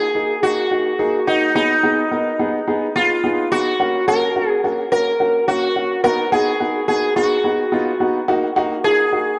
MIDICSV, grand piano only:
0, 0, Header, 1, 2, 480
1, 0, Start_track
1, 0, Tempo, 560748
1, 1329, Time_signature, 4, 2, 24, 8
1, 8038, End_track
2, 0, Start_track
2, 0, Title_t, "Grand piano"
2, 0, Program_c, 0, 0
2, 129, Note_on_c, 0, 58, 73
2, 129, Note_on_c, 0, 63, 68
2, 129, Note_on_c, 0, 68, 79
2, 284, Note_off_c, 0, 58, 0
2, 284, Note_off_c, 0, 63, 0
2, 285, Note_off_c, 0, 68, 0
2, 370, Note_on_c, 0, 58, 73
2, 370, Note_on_c, 0, 63, 66
2, 370, Note_on_c, 0, 66, 79
2, 525, Note_off_c, 0, 58, 0
2, 525, Note_off_c, 0, 63, 0
2, 525, Note_off_c, 0, 66, 0
2, 610, Note_on_c, 0, 58, 72
2, 610, Note_on_c, 0, 63, 63
2, 610, Note_on_c, 0, 66, 78
2, 765, Note_off_c, 0, 58, 0
2, 765, Note_off_c, 0, 63, 0
2, 765, Note_off_c, 0, 66, 0
2, 849, Note_on_c, 0, 68, 102
2, 850, Note_on_c, 0, 58, 92
2, 850, Note_on_c, 0, 63, 82
2, 1004, Note_off_c, 0, 68, 0
2, 1005, Note_off_c, 0, 58, 0
2, 1005, Note_off_c, 0, 63, 0
2, 1090, Note_on_c, 0, 58, 68
2, 1090, Note_on_c, 0, 63, 64
2, 1090, Note_on_c, 0, 66, 79
2, 1245, Note_off_c, 0, 58, 0
2, 1245, Note_off_c, 0, 63, 0
2, 1245, Note_off_c, 0, 66, 0
2, 1330, Note_on_c, 0, 59, 92
2, 1330, Note_on_c, 0, 63, 83
2, 1330, Note_on_c, 0, 68, 100
2, 1485, Note_off_c, 0, 59, 0
2, 1485, Note_off_c, 0, 63, 0
2, 1485, Note_off_c, 0, 68, 0
2, 1571, Note_on_c, 0, 59, 92
2, 1571, Note_on_c, 0, 63, 89
2, 1571, Note_on_c, 0, 68, 101
2, 1725, Note_off_c, 0, 59, 0
2, 1725, Note_off_c, 0, 63, 0
2, 1725, Note_off_c, 0, 68, 0
2, 1810, Note_on_c, 0, 59, 70
2, 1810, Note_on_c, 0, 70, 80
2, 1811, Note_on_c, 0, 63, 65
2, 1965, Note_off_c, 0, 59, 0
2, 1965, Note_off_c, 0, 63, 0
2, 1965, Note_off_c, 0, 70, 0
2, 2050, Note_on_c, 0, 59, 87
2, 2050, Note_on_c, 0, 63, 79
2, 2050, Note_on_c, 0, 68, 93
2, 2205, Note_off_c, 0, 59, 0
2, 2205, Note_off_c, 0, 63, 0
2, 2205, Note_off_c, 0, 68, 0
2, 2290, Note_on_c, 0, 59, 84
2, 2290, Note_on_c, 0, 63, 78
2, 2290, Note_on_c, 0, 68, 96
2, 2445, Note_off_c, 0, 59, 0
2, 2445, Note_off_c, 0, 63, 0
2, 2445, Note_off_c, 0, 68, 0
2, 2530, Note_on_c, 0, 68, 81
2, 2531, Note_on_c, 0, 59, 72
2, 2531, Note_on_c, 0, 63, 64
2, 2685, Note_off_c, 0, 59, 0
2, 2685, Note_off_c, 0, 63, 0
2, 2685, Note_off_c, 0, 68, 0
2, 2771, Note_on_c, 0, 59, 88
2, 2771, Note_on_c, 0, 63, 81
2, 2771, Note_on_c, 0, 68, 95
2, 2925, Note_off_c, 0, 59, 0
2, 2925, Note_off_c, 0, 63, 0
2, 2925, Note_off_c, 0, 68, 0
2, 3010, Note_on_c, 0, 59, 69
2, 3010, Note_on_c, 0, 63, 62
2, 3010, Note_on_c, 0, 68, 78
2, 3165, Note_off_c, 0, 59, 0
2, 3165, Note_off_c, 0, 63, 0
2, 3165, Note_off_c, 0, 68, 0
2, 3250, Note_on_c, 0, 58, 91
2, 3250, Note_on_c, 0, 61, 79
2, 3250, Note_on_c, 0, 66, 100
2, 3405, Note_off_c, 0, 58, 0
2, 3405, Note_off_c, 0, 61, 0
2, 3405, Note_off_c, 0, 66, 0
2, 3491, Note_on_c, 0, 58, 91
2, 3491, Note_on_c, 0, 61, 86
2, 3491, Note_on_c, 0, 66, 107
2, 3645, Note_off_c, 0, 58, 0
2, 3645, Note_off_c, 0, 61, 0
2, 3645, Note_off_c, 0, 66, 0
2, 3730, Note_on_c, 0, 58, 73
2, 3730, Note_on_c, 0, 66, 76
2, 3731, Note_on_c, 0, 61, 64
2, 3885, Note_off_c, 0, 58, 0
2, 3885, Note_off_c, 0, 61, 0
2, 3885, Note_off_c, 0, 66, 0
2, 3970, Note_on_c, 0, 61, 69
2, 3971, Note_on_c, 0, 58, 73
2, 3971, Note_on_c, 0, 66, 78
2, 4125, Note_off_c, 0, 58, 0
2, 4125, Note_off_c, 0, 61, 0
2, 4125, Note_off_c, 0, 66, 0
2, 4210, Note_on_c, 0, 66, 77
2, 4211, Note_on_c, 0, 58, 72
2, 4211, Note_on_c, 0, 61, 65
2, 4365, Note_off_c, 0, 58, 0
2, 4365, Note_off_c, 0, 61, 0
2, 4365, Note_off_c, 0, 66, 0
2, 4450, Note_on_c, 0, 58, 73
2, 4450, Note_on_c, 0, 61, 65
2, 4450, Note_on_c, 0, 66, 79
2, 4605, Note_off_c, 0, 58, 0
2, 4605, Note_off_c, 0, 61, 0
2, 4605, Note_off_c, 0, 66, 0
2, 4690, Note_on_c, 0, 58, 89
2, 4690, Note_on_c, 0, 61, 84
2, 4690, Note_on_c, 0, 66, 98
2, 4845, Note_off_c, 0, 58, 0
2, 4845, Note_off_c, 0, 61, 0
2, 4845, Note_off_c, 0, 66, 0
2, 4930, Note_on_c, 0, 58, 70
2, 4930, Note_on_c, 0, 61, 65
2, 4930, Note_on_c, 0, 66, 73
2, 5085, Note_off_c, 0, 58, 0
2, 5085, Note_off_c, 0, 61, 0
2, 5085, Note_off_c, 0, 66, 0
2, 5169, Note_on_c, 0, 66, 100
2, 5170, Note_on_c, 0, 59, 91
2, 5170, Note_on_c, 0, 63, 85
2, 5325, Note_off_c, 0, 59, 0
2, 5325, Note_off_c, 0, 63, 0
2, 5325, Note_off_c, 0, 66, 0
2, 5410, Note_on_c, 0, 59, 93
2, 5410, Note_on_c, 0, 63, 87
2, 5410, Note_on_c, 0, 66, 102
2, 5565, Note_off_c, 0, 59, 0
2, 5565, Note_off_c, 0, 63, 0
2, 5565, Note_off_c, 0, 66, 0
2, 5650, Note_on_c, 0, 59, 71
2, 5650, Note_on_c, 0, 63, 66
2, 5650, Note_on_c, 0, 66, 77
2, 5805, Note_off_c, 0, 59, 0
2, 5805, Note_off_c, 0, 63, 0
2, 5805, Note_off_c, 0, 66, 0
2, 5890, Note_on_c, 0, 59, 71
2, 5890, Note_on_c, 0, 63, 67
2, 5890, Note_on_c, 0, 66, 78
2, 6045, Note_off_c, 0, 59, 0
2, 6045, Note_off_c, 0, 63, 0
2, 6045, Note_off_c, 0, 66, 0
2, 6130, Note_on_c, 0, 59, 72
2, 6130, Note_on_c, 0, 63, 65
2, 6130, Note_on_c, 0, 66, 79
2, 6285, Note_off_c, 0, 59, 0
2, 6285, Note_off_c, 0, 63, 0
2, 6285, Note_off_c, 0, 66, 0
2, 6370, Note_on_c, 0, 59, 72
2, 6370, Note_on_c, 0, 63, 66
2, 6370, Note_on_c, 0, 66, 79
2, 6525, Note_off_c, 0, 59, 0
2, 6525, Note_off_c, 0, 63, 0
2, 6525, Note_off_c, 0, 66, 0
2, 6610, Note_on_c, 0, 59, 91
2, 6610, Note_on_c, 0, 63, 84
2, 6610, Note_on_c, 0, 65, 100
2, 6765, Note_off_c, 0, 59, 0
2, 6765, Note_off_c, 0, 63, 0
2, 6765, Note_off_c, 0, 65, 0
2, 6850, Note_on_c, 0, 59, 85
2, 6850, Note_on_c, 0, 63, 76
2, 6850, Note_on_c, 0, 66, 90
2, 7005, Note_off_c, 0, 59, 0
2, 7005, Note_off_c, 0, 63, 0
2, 7005, Note_off_c, 0, 66, 0
2, 7090, Note_on_c, 0, 58, 105
2, 7090, Note_on_c, 0, 66, 115
2, 7091, Note_on_c, 0, 63, 102
2, 7245, Note_off_c, 0, 58, 0
2, 7245, Note_off_c, 0, 63, 0
2, 7245, Note_off_c, 0, 66, 0
2, 7330, Note_on_c, 0, 58, 111
2, 7330, Note_on_c, 0, 63, 108
2, 7330, Note_on_c, 0, 66, 124
2, 7485, Note_off_c, 0, 58, 0
2, 7485, Note_off_c, 0, 63, 0
2, 7485, Note_off_c, 0, 66, 0
2, 7570, Note_on_c, 0, 58, 69
2, 7570, Note_on_c, 0, 63, 65
2, 7570, Note_on_c, 0, 65, 79
2, 7725, Note_off_c, 0, 58, 0
2, 7725, Note_off_c, 0, 63, 0
2, 7725, Note_off_c, 0, 65, 0
2, 7810, Note_on_c, 0, 58, 72
2, 7810, Note_on_c, 0, 63, 66
2, 7810, Note_on_c, 0, 66, 82
2, 7965, Note_off_c, 0, 58, 0
2, 7965, Note_off_c, 0, 63, 0
2, 7965, Note_off_c, 0, 66, 0
2, 8038, End_track
0, 0, End_of_file